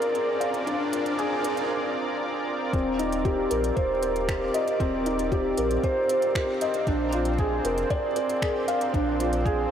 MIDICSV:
0, 0, Header, 1, 6, 480
1, 0, Start_track
1, 0, Tempo, 517241
1, 618, Time_signature, 4, 2, 24, 8
1, 9011, End_track
2, 0, Start_track
2, 0, Title_t, "Felt piano"
2, 0, Program_c, 0, 0
2, 0, Control_c, 0, 64, 127
2, 0, Note_on_c, 0, 62, 101
2, 0, Note_on_c, 0, 65, 76
2, 0, Note_on_c, 0, 68, 95
2, 0, Note_on_c, 0, 70, 70
2, 0, Note_on_c, 0, 74, 103
2, 130, Note_off_c, 0, 68, 0
2, 130, Note_on_c, 0, 68, 71
2, 271, Note_off_c, 0, 68, 0
2, 373, Note_on_c, 0, 77, 79
2, 604, Note_off_c, 0, 77, 0
2, 616, Note_off_c, 0, 62, 0
2, 616, Note_on_c, 0, 62, 104
2, 845, Note_off_c, 0, 62, 0
2, 856, Note_off_c, 0, 65, 0
2, 856, Note_on_c, 0, 65, 76
2, 994, Note_off_c, 0, 65, 0
2, 1097, Note_on_c, 0, 68, 102
2, 1326, Note_off_c, 0, 68, 0
2, 1332, Note_off_c, 0, 70, 0
2, 1332, Note_on_c, 0, 70, 72
2, 1472, Note_off_c, 0, 70, 0
2, 2534, Note_on_c, 0, 60, 98
2, 2550, Control_c, 0, 64, 0
2, 2556, Note_off_c, 0, 74, 0
2, 2692, Control_c, 0, 64, 127
2, 2764, Note_off_c, 0, 60, 0
2, 2774, Note_on_c, 0, 63, 71
2, 2913, Note_off_c, 0, 63, 0
2, 3014, Note_on_c, 0, 67, 101
2, 3244, Note_off_c, 0, 67, 0
2, 3251, Note_on_c, 0, 70, 73
2, 3391, Note_off_c, 0, 70, 0
2, 3492, Note_on_c, 0, 72, 96
2, 3632, Note_off_c, 0, 72, 0
2, 3734, Note_on_c, 0, 70, 74
2, 3873, Note_off_c, 0, 70, 0
2, 3973, Note_on_c, 0, 67, 69
2, 4112, Note_off_c, 0, 67, 0
2, 4214, Note_on_c, 0, 75, 77
2, 4444, Note_off_c, 0, 75, 0
2, 4452, Note_on_c, 0, 60, 110
2, 4683, Note_off_c, 0, 60, 0
2, 4696, Note_on_c, 0, 63, 76
2, 4834, Note_off_c, 0, 63, 0
2, 4936, Note_on_c, 0, 67, 99
2, 5165, Note_off_c, 0, 67, 0
2, 5178, Note_on_c, 0, 70, 70
2, 5315, Note_off_c, 0, 70, 0
2, 5419, Note_on_c, 0, 72, 104
2, 5555, Note_off_c, 0, 72, 0
2, 5656, Note_on_c, 0, 70, 69
2, 5794, Note_off_c, 0, 70, 0
2, 5899, Note_on_c, 0, 67, 68
2, 6035, Note_off_c, 0, 67, 0
2, 6139, Note_on_c, 0, 75, 80
2, 6367, Note_off_c, 0, 75, 0
2, 6382, Note_on_c, 0, 62, 108
2, 6391, Control_c, 0, 64, 0
2, 6555, Control_c, 0, 64, 127
2, 6608, Note_off_c, 0, 62, 0
2, 6621, Note_on_c, 0, 65, 72
2, 6756, Note_off_c, 0, 65, 0
2, 6860, Note_on_c, 0, 68, 98
2, 7087, Note_off_c, 0, 68, 0
2, 7097, Note_on_c, 0, 70, 75
2, 7234, Note_off_c, 0, 70, 0
2, 7335, Note_on_c, 0, 74, 104
2, 7474, Note_off_c, 0, 74, 0
2, 7576, Note_on_c, 0, 70, 69
2, 7714, Note_off_c, 0, 70, 0
2, 7816, Note_on_c, 0, 68, 75
2, 7954, Note_off_c, 0, 68, 0
2, 8054, Note_on_c, 0, 77, 82
2, 8284, Note_off_c, 0, 77, 0
2, 8296, Note_on_c, 0, 62, 101
2, 8525, Note_off_c, 0, 62, 0
2, 8534, Note_on_c, 0, 65, 72
2, 8673, Note_off_c, 0, 65, 0
2, 8774, Note_on_c, 0, 68, 98
2, 9004, Note_off_c, 0, 68, 0
2, 9011, End_track
3, 0, Start_track
3, 0, Title_t, "Analog synth pad"
3, 0, Program_c, 1, 89
3, 0, Note_on_c, 1, 60, 68
3, 0, Note_on_c, 1, 65, 78
3, 0, Note_on_c, 1, 70, 82
3, 0, Note_on_c, 1, 74, 78
3, 2524, Note_off_c, 1, 60, 0
3, 2535, Note_on_c, 1, 60, 92
3, 9011, Note_off_c, 1, 60, 0
3, 9011, Note_off_c, 1, 65, 0
3, 9011, Note_off_c, 1, 70, 0
3, 9011, Note_off_c, 1, 74, 0
3, 9011, End_track
4, 0, Start_track
4, 0, Title_t, "Sub bass"
4, 0, Program_c, 2, 38
4, 617, Note_on_c, 2, 34, 104
4, 1294, Note_off_c, 2, 34, 0
4, 2536, Note_on_c, 2, 27, 97
4, 3214, Note_off_c, 2, 27, 0
4, 3258, Note_on_c, 2, 34, 104
4, 3444, Note_off_c, 2, 34, 0
4, 3497, Note_on_c, 2, 27, 100
4, 4174, Note_off_c, 2, 27, 0
4, 4455, Note_on_c, 2, 27, 97
4, 5133, Note_off_c, 2, 27, 0
4, 5177, Note_on_c, 2, 34, 105
4, 5363, Note_off_c, 2, 34, 0
4, 6374, Note_on_c, 2, 34, 95
4, 7052, Note_off_c, 2, 34, 0
4, 7093, Note_on_c, 2, 29, 110
4, 7282, Note_off_c, 2, 29, 0
4, 8296, Note_on_c, 2, 34, 97
4, 8974, Note_off_c, 2, 34, 0
4, 9011, End_track
5, 0, Start_track
5, 0, Title_t, "Riser"
5, 0, Program_c, 3, 103
5, 0, Note_on_c, 3, 60, 67
5, 1577, Note_off_c, 3, 60, 0
5, 9011, End_track
6, 0, Start_track
6, 0, Title_t, "Drums"
6, 18, Note_on_c, 9, 42, 44
6, 110, Note_off_c, 9, 42, 0
6, 139, Note_on_c, 9, 42, 32
6, 232, Note_off_c, 9, 42, 0
6, 382, Note_on_c, 9, 42, 74
6, 475, Note_off_c, 9, 42, 0
6, 502, Note_on_c, 9, 42, 40
6, 595, Note_off_c, 9, 42, 0
6, 624, Note_on_c, 9, 42, 35
6, 717, Note_off_c, 9, 42, 0
6, 863, Note_on_c, 9, 42, 70
6, 956, Note_off_c, 9, 42, 0
6, 985, Note_on_c, 9, 42, 42
6, 1077, Note_off_c, 9, 42, 0
6, 1103, Note_on_c, 9, 42, 27
6, 1196, Note_off_c, 9, 42, 0
6, 1340, Note_on_c, 9, 42, 77
6, 1433, Note_off_c, 9, 42, 0
6, 1459, Note_on_c, 9, 42, 39
6, 1552, Note_off_c, 9, 42, 0
6, 2536, Note_on_c, 9, 36, 107
6, 2539, Note_on_c, 9, 42, 34
6, 2629, Note_off_c, 9, 36, 0
6, 2632, Note_off_c, 9, 42, 0
6, 2779, Note_on_c, 9, 42, 73
6, 2872, Note_off_c, 9, 42, 0
6, 2900, Note_on_c, 9, 42, 42
6, 2993, Note_off_c, 9, 42, 0
6, 3016, Note_on_c, 9, 36, 109
6, 3017, Note_on_c, 9, 42, 28
6, 3109, Note_off_c, 9, 36, 0
6, 3110, Note_off_c, 9, 42, 0
6, 3256, Note_on_c, 9, 42, 78
6, 3349, Note_off_c, 9, 42, 0
6, 3378, Note_on_c, 9, 42, 40
6, 3471, Note_off_c, 9, 42, 0
6, 3496, Note_on_c, 9, 42, 31
6, 3497, Note_on_c, 9, 36, 114
6, 3589, Note_off_c, 9, 42, 0
6, 3590, Note_off_c, 9, 36, 0
6, 3736, Note_on_c, 9, 42, 70
6, 3829, Note_off_c, 9, 42, 0
6, 3859, Note_on_c, 9, 42, 42
6, 3952, Note_off_c, 9, 42, 0
6, 3976, Note_on_c, 9, 36, 106
6, 3978, Note_on_c, 9, 26, 79
6, 3978, Note_on_c, 9, 42, 34
6, 4069, Note_off_c, 9, 36, 0
6, 4071, Note_off_c, 9, 26, 0
6, 4071, Note_off_c, 9, 42, 0
6, 4216, Note_on_c, 9, 42, 74
6, 4309, Note_off_c, 9, 42, 0
6, 4339, Note_on_c, 9, 42, 39
6, 4432, Note_off_c, 9, 42, 0
6, 4456, Note_on_c, 9, 36, 109
6, 4458, Note_on_c, 9, 42, 36
6, 4549, Note_off_c, 9, 36, 0
6, 4551, Note_off_c, 9, 42, 0
6, 4697, Note_on_c, 9, 42, 73
6, 4790, Note_off_c, 9, 42, 0
6, 4818, Note_on_c, 9, 42, 42
6, 4911, Note_off_c, 9, 42, 0
6, 4935, Note_on_c, 9, 36, 102
6, 4937, Note_on_c, 9, 42, 30
6, 5028, Note_off_c, 9, 36, 0
6, 5030, Note_off_c, 9, 42, 0
6, 5174, Note_on_c, 9, 42, 80
6, 5267, Note_off_c, 9, 42, 0
6, 5296, Note_on_c, 9, 42, 41
6, 5389, Note_off_c, 9, 42, 0
6, 5415, Note_on_c, 9, 36, 110
6, 5415, Note_on_c, 9, 42, 31
6, 5508, Note_off_c, 9, 36, 0
6, 5508, Note_off_c, 9, 42, 0
6, 5656, Note_on_c, 9, 42, 74
6, 5748, Note_off_c, 9, 42, 0
6, 5774, Note_on_c, 9, 42, 44
6, 5867, Note_off_c, 9, 42, 0
6, 5895, Note_on_c, 9, 36, 109
6, 5896, Note_on_c, 9, 26, 76
6, 5896, Note_on_c, 9, 42, 33
6, 5987, Note_off_c, 9, 36, 0
6, 5989, Note_off_c, 9, 26, 0
6, 5989, Note_off_c, 9, 42, 0
6, 6136, Note_on_c, 9, 42, 78
6, 6229, Note_off_c, 9, 42, 0
6, 6254, Note_on_c, 9, 42, 42
6, 6347, Note_off_c, 9, 42, 0
6, 6374, Note_on_c, 9, 36, 111
6, 6375, Note_on_c, 9, 42, 36
6, 6467, Note_off_c, 9, 36, 0
6, 6468, Note_off_c, 9, 42, 0
6, 6612, Note_on_c, 9, 42, 75
6, 6705, Note_off_c, 9, 42, 0
6, 6730, Note_on_c, 9, 42, 46
6, 6823, Note_off_c, 9, 42, 0
6, 6853, Note_on_c, 9, 42, 30
6, 6854, Note_on_c, 9, 36, 110
6, 6946, Note_off_c, 9, 42, 0
6, 6947, Note_off_c, 9, 36, 0
6, 7097, Note_on_c, 9, 42, 83
6, 7190, Note_off_c, 9, 42, 0
6, 7217, Note_on_c, 9, 42, 41
6, 7310, Note_off_c, 9, 42, 0
6, 7335, Note_on_c, 9, 36, 117
6, 7335, Note_on_c, 9, 42, 35
6, 7427, Note_off_c, 9, 42, 0
6, 7428, Note_off_c, 9, 36, 0
6, 7574, Note_on_c, 9, 42, 79
6, 7666, Note_off_c, 9, 42, 0
6, 7698, Note_on_c, 9, 42, 45
6, 7791, Note_off_c, 9, 42, 0
6, 7815, Note_on_c, 9, 36, 106
6, 7817, Note_on_c, 9, 26, 73
6, 7817, Note_on_c, 9, 42, 33
6, 7908, Note_off_c, 9, 36, 0
6, 7910, Note_off_c, 9, 26, 0
6, 7910, Note_off_c, 9, 42, 0
6, 8056, Note_on_c, 9, 42, 77
6, 8149, Note_off_c, 9, 42, 0
6, 8177, Note_on_c, 9, 42, 40
6, 8270, Note_off_c, 9, 42, 0
6, 8295, Note_on_c, 9, 36, 111
6, 8298, Note_on_c, 9, 42, 38
6, 8388, Note_off_c, 9, 36, 0
6, 8391, Note_off_c, 9, 42, 0
6, 8540, Note_on_c, 9, 42, 77
6, 8632, Note_off_c, 9, 42, 0
6, 8656, Note_on_c, 9, 42, 42
6, 8749, Note_off_c, 9, 42, 0
6, 8775, Note_on_c, 9, 36, 115
6, 8781, Note_on_c, 9, 42, 30
6, 8868, Note_off_c, 9, 36, 0
6, 8874, Note_off_c, 9, 42, 0
6, 9011, End_track
0, 0, End_of_file